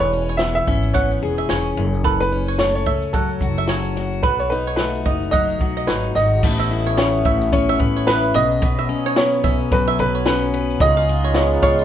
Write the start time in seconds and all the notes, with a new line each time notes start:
Already playing: E1 E3 B4
0.00 C#5, shaker
0.13 C#4, shaker
0.29 C#5, shaker
0.37 B3 E5, snare, shaker
0.55 E5, shaker
0.67 G#1 C#4 E5, kick, shaker
0.83 shaker
0.94 B3 C#5 F#5, kick, shaker
1.11 shaker
1.22 E1 G#4
1.38 E5, shaker
1.49 E1 C#4 C#5, snare, shaker
1.65 shaker
1.77 F#1 F#2
1.94 shaker
2.04 F#2 A4 B4, kick, shaker
2.21 B4, shaker
2.32 C#4
2.48 C#5, shaker
2.59 A3 C#5, snare, shaker
2.75 C#5, shaker
2.86 C#2 C#4 E5, kick
3.02 shaker
3.13 F#3 A4 F#5, kick, shaker
3.29 shaker
3.40 F#1 F#4, kick, shaker
3.57 E5, shaker
3.68 C#4 C#5, snare, shaker
3.84 shaker
3.95 F#4, snare
4.13 shaker
4.23 B1 B2 B4, kick, shaker
4.39 C#5, shaker
4.50 D#4 B4, shaker
4.67 C#5, shaker
4.76 A3 B4, snare, shaker
4.95 shaker
5.06 F#1 D#4 D#5, kick
5.22 shaker
5.31 F#3 D#5 F#5, kick, shaker
5.49 shaker
5.61 B1 F#4, kick
5.77 D#5, shaker
5.87 G#1 D#4 B4 C#5, snare, shaker
6.04 shaker
6.15 G#1 F#4 D#5, snare, shaker
6.32 shaker
6.43 A1 A3 B3 C#4 B4, kick, crash
6.60 E5, shaker
6.71 E4, shaker
6.87 C#5, shaker
6.97 C#4 C#5, snare, shaker
7.15 shaker
7.25 A1 E4 E5, kick
7.41 shaker
7.52 C#4 C#5, kick, shaker
7.69 E5, shaker
7.79 A1 B4, kick
7.96 C#5, shaker
8.07 E4 B4, snare, shaker
8.23 shaker
8.34 B1 B2 F#3 D#5
8.51 shaker
8.62 B2 B4, kick, shaker
8.78 E5, shaker
8.89 C#4
9.06 C#5, shaker
9.16 B3 C#5, snare, shaker
9.33 shaker
9.44 B1 C#4 E5, kick
9.60 shaker
9.72 F#3 B4, kick, shaker
9.87 E5, shaker
9.98 B1 B4, shaker
10.15 C#5, shaker
10.26 C#4 B4, snare, shaker
10.42 shaker
10.54 B4
10.70 shaker
10.80 C#2 C#3 G#3 D#4 F4 G#4 D#5, kick, shaker
10.97 F5, shaker
11.09 F4
11.24 C#5, shaker
11.34 B3 C#5, snare, shaker
11.52 shaker
11.62 C#2 F4 C#5 F5, kick, shaker
11.79 shaker